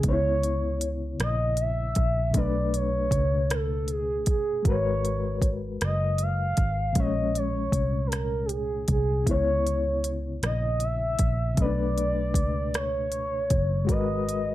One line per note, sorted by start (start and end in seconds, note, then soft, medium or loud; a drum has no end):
0.01 1.16 C#2 medium
0.01 2.29 C#3 medium
0.01 2.31 B3 soft
0.01 kick medium
0.01 closed hi-hat medium
0.06 0.11 D#4 soft
0.06 0.88 C#5 medium
0.06 2.33 C#5 medium
0.13 2.35 E4 medium
0.43 closed hi-hat soft
0.81 closed hi-hat medium
1.20 1.93 A#1 medium
1.20 1.62 D#5 loud
1.20 cross-stick loud
1.20 closed hi-hat medium
1.57 2.38 E5 loud
1.57 closed hi-hat soft
1.95 2.31 A#1 medium
1.95 kick medium
1.95 closed hi-hat medium
2.31 3.08 B1 loud
2.31 4.60 B2 medium
2.31 4.61 A3 medium
2.31 kick medium
2.31 closed hi-hat medium
2.36 4.62 D4 medium
2.36 4.63 B4 medium
2.36 2.77 D5 medium
2.74 3.55 C#5 medium
2.74 closed hi-hat soft
3.11 4.27 C#2 medium
3.11 kick medium
3.11 closed hi-hat medium
3.50 3.92 A4 medium
3.50 cross-stick loud
3.50 closed hi-hat medium
3.88 4.28 G#4 medium
3.88 closed hi-hat soft
4.26 4.62 F#1 medium
4.26 4.64 G#4 medium
4.26 kick medium
4.26 closed hi-hat medium
4.63 5.77 G#1 medium
4.63 6.91 G#3 medium
4.63 6.92 F#4 soft
4.63 kick medium
4.63 closed hi-hat medium
4.67 6.93 A#4 medium
4.67 6.95 B4 medium
4.67 5.49 C#5 medium
5.05 closed hi-hat soft
5.42 kick medium
5.42 closed hi-hat medium
5.81 6.54 F#1 medium
5.81 6.24 D#5 loud
5.81 cross-stick loud
5.81 closed hi-hat medium
6.18 7.01 F5 loud
6.18 closed hi-hat soft
6.57 6.93 G#1 medium
6.57 kick medium
6.57 closed hi-hat medium
6.93 7.69 A#1 medium
6.93 9.21 A#2 medium
6.93 9.23 G#3 medium
6.93 kick medium
6.93 closed hi-hat medium
6.98 9.24 C#4 soft
6.98 9.25 C#5 medium
6.98 7.39 D#5 loud
7.35 8.08 C#5 medium
7.35 closed hi-hat soft
7.72 8.84 C2 medium
7.72 kick medium
7.72 closed hi-hat medium
8.07 8.16 A4 medium
8.12 8.47 A#4 medium
8.12 cross-stick medium
8.12 closed hi-hat medium
8.45 8.54 G4 medium
8.45 closed hi-hat soft
8.52 8.90 G#4 medium
8.88 9.23 C2 medium
8.88 9.26 G#4 medium
8.88 kick medium
8.88 closed hi-hat medium
9.24 10.39 C#2 medium
9.24 11.52 C#3 medium
9.24 11.53 B3 medium
9.24 kick medium
9.24 closed hi-hat medium
9.29 11.55 E4 soft
9.29 10.11 C#5 loud
9.29 11.56 C#5 medium
9.67 closed hi-hat soft
10.04 closed hi-hat medium
10.43 11.16 A#1 medium
10.43 10.85 D#5 medium
10.43 cross-stick loud
10.43 closed hi-hat medium
10.80 11.59 E5 medium
10.80 closed hi-hat soft
11.19 11.54 A#1 medium
11.19 kick medium
11.19 closed hi-hat medium
11.55 12.35 B1 loud
11.55 13.83 B2 medium
11.55 13.84 A3 medium
11.55 kick medium
11.55 closed hi-hat medium
11.60 11.65 C#4 soft
11.60 13.87 B4 medium
11.60 12.77 D5 medium
11.66 13.89 D4 soft
11.98 closed hi-hat soft
12.34 13.53 C#2 medium
12.34 kick medium
12.34 closed hi-hat medium
12.74 13.90 C#5 medium
12.74 cross-stick loud
12.74 closed hi-hat medium
13.12 closed hi-hat soft
13.50 13.89 F#1 medium
13.50 kick medium
13.50 closed hi-hat medium
13.85 14.55 G#3 medium
13.85 14.55 F#4 medium
13.85 kick medium
13.85 closed hi-hat medium
13.89 14.55 G#1 loud
13.89 14.55 A#4 soft
13.89 14.55 B4 medium
13.89 14.55 D#5 medium
14.29 closed hi-hat soft